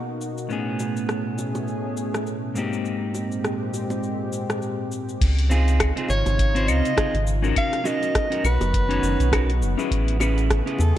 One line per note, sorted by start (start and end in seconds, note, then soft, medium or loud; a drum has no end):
0.00 0.47 B2 medium
0.00 0.48 B2 medium
0.00 0.47 A#3 medium
0.00 0.48 A#3 medium
0.00 0.48 C#4 medium
0.00 0.48 D#4 medium
0.00 0.48 F#4 medium
0.21 cabasa medium
0.38 cabasa soft
0.49 2.52 A2 medium
0.49 2.54 B2 medium
0.49 2.54 A3 medium
0.49 2.53 B3 medium
0.49 2.53 C#4 medium
0.49 2.54 C#4 medium
0.49 2.54 G#4 medium
0.49 cabasa soft
0.79 high bongo soft
0.79 cabasa medium
0.97 cabasa soft
1.09 cross-stick medium
1.09 cabasa soft
1.38 high bongo soft
1.38 cabasa medium
1.55 high bongo soft
1.55 cabasa soft
1.68 cabasa soft
1.97 cabasa medium
2.14 cross-stick medium
2.14 cabasa soft
2.27 cabasa soft
2.54 5.17 G#2 medium
2.54 5.19 A#2 medium
2.54 5.18 G#3 medium
2.54 5.17 A#3 medium
2.54 5.18 C4 medium
2.54 5.19 D#4 medium
2.54 5.19 G4 medium
2.54 cabasa medium
2.73 cabasa soft
2.85 cabasa soft
3.14 high bongo soft
3.14 cabasa medium
3.32 cabasa soft
3.44 cross-stick medium
3.44 cabasa soft
3.74 high bongo soft
3.74 cabasa medium
3.90 high bongo medium
3.90 cabasa soft
4.03 cabasa soft
4.33 cabasa medium
4.50 cross-stick medium
4.50 cabasa soft
4.62 cabasa soft
4.92 cabasa medium
5.09 cabasa soft
5.21 5.92 C#2 loud
5.21 7.54 C3 medium
5.21 7.54 C#3 medium
5.21 7.54 D#4 medium
5.21 7.54 F4 medium
5.21 kick loud
5.21 closed hi-hat medium
5.21 crash loud
5.21 cabasa soft
5.39 closed hi-hat soft
5.50 5.92 C4 medium
5.50 5.92 D#4 medium
5.50 5.93 F4 medium
5.50 5.93 G#4 medium
5.50 high bongo soft
5.50 cabasa medium
5.68 closed hi-hat soft
5.68 cabasa soft
5.80 kick loud
5.80 cross-stick loud
5.80 closed hi-hat medium
5.80 cabasa soft
5.80 claves medium
5.96 6.10 C4 medium
5.96 6.10 D#4 medium
5.96 6.10 F4 medium
5.96 6.11 G#4 medium
5.96 closed hi-hat soft
6.08 6.23 G#1 medium
6.08 6.70 C#5 loud
6.08 high bongo soft
6.08 cabasa medium
6.26 6.70 G#1 medium
6.26 closed hi-hat soft
6.26 high bongo medium
6.26 cabasa soft
6.39 kick loud
6.39 closed hi-hat medium
6.39 cabasa soft
6.55 6.94 C4 medium
6.55 6.94 D#4 medium
6.55 6.95 F4 medium
6.55 6.95 C5 medium
6.55 closed hi-hat soft
6.68 6.82 C#2 medium
6.68 7.27 D#5 loud
6.68 cabasa medium
6.68 claves medium
6.85 closed hi-hat soft
6.85 cabasa soft
6.96 7.15 C4 medium
6.96 7.15 D#4 medium
6.96 7.15 F4 medium
6.96 7.16 G#4 medium
6.96 kick loud
6.96 cross-stick loud
6.96 closed hi-hat medium
6.96 cabasa soft
7.14 7.52 G#1 loud
7.14 closed hi-hat soft
7.27 cabasa medium
7.42 7.82 C#4 medium
7.42 7.82 D#4 medium
7.42 7.83 F#4 medium
7.42 7.83 A#4 loud
7.42 cabasa soft
7.56 9.89 D#3 medium
7.56 9.89 F#3 medium
7.56 10.98 B3 medium
7.56 9.89 F#4 medium
7.56 7.88 F5 loud
7.56 kick loud
7.56 closed hi-hat medium
7.56 cabasa soft
7.56 claves medium
7.73 cross-stick soft
7.73 closed hi-hat soft
7.84 8.27 C#4 medium
7.84 8.27 D#4 medium
7.84 8.28 F#4 medium
7.84 8.28 A#4 medium
7.84 8.45 D#5 loud
7.84 high bongo medium
7.84 cabasa medium
8.03 closed hi-hat soft
8.03 cabasa soft
8.15 kick loud
8.15 cross-stick loud
8.15 closed hi-hat medium
8.15 cabasa soft
8.30 8.45 C#4 medium
8.30 8.45 D#4 medium
8.30 8.45 F#4 medium
8.30 8.46 A#4 medium
8.30 closed hi-hat soft
8.44 8.58 B1 loud
8.44 9.59 B4 medium
8.44 high bongo soft
8.44 cabasa medium
8.44 claves medium
8.61 8.99 F#1 medium
8.61 closed hi-hat soft
8.61 high bongo medium
8.61 cabasa soft
8.74 kick loud
8.74 closed hi-hat medium
8.74 cabasa soft
8.89 9.29 C#4 medium
8.89 9.29 D#4 medium
8.89 9.29 F#4 medium
8.89 9.30 C#5 medium
8.89 closed hi-hat soft
9.03 9.17 F#1 medium
9.03 cabasa medium
9.20 9.63 B1 loud
9.20 closed hi-hat soft
9.20 cabasa soft
9.32 9.50 C#4 medium
9.32 9.50 D#4 medium
9.32 9.50 F#4 medium
9.32 9.51 A#4 medium
9.32 kick loud
9.32 cross-stick loud
9.32 closed hi-hat medium
9.32 cabasa soft
9.32 claves medium
9.50 closed hi-hat soft
9.62 9.75 F#1 loud
9.62 cabasa medium
9.77 10.17 C#4 medium
9.77 10.17 E4 medium
9.77 10.18 G#4 medium
9.77 10.18 B4 loud
9.77 cabasa medium
9.91 10.62 A1 loud
9.91 10.98 C#3 medium
9.91 10.98 A3 medium
9.91 10.98 G#4 loud
9.91 kick loud
9.91 closed hi-hat medium
9.91 cabasa soft
10.08 closed hi-hat soft
10.20 10.62 C#4 medium
10.20 10.63 E4 medium
10.20 10.63 G#4 medium
10.20 10.64 B4 medium
10.20 high bongo medium
10.20 cabasa medium
10.20 claves medium
10.38 closed hi-hat soft
10.38 cabasa soft
10.50 kick loud
10.50 cross-stick loud
10.50 closed hi-hat medium
10.50 cabasa soft
10.66 10.80 C#4 medium
10.66 10.80 E4 medium
10.66 10.81 G#4 medium
10.66 10.81 B4 medium
10.66 closed hi-hat soft
10.78 10.93 E2 loud
10.78 10.98 A4 medium
10.78 high bongo soft
10.78 cabasa medium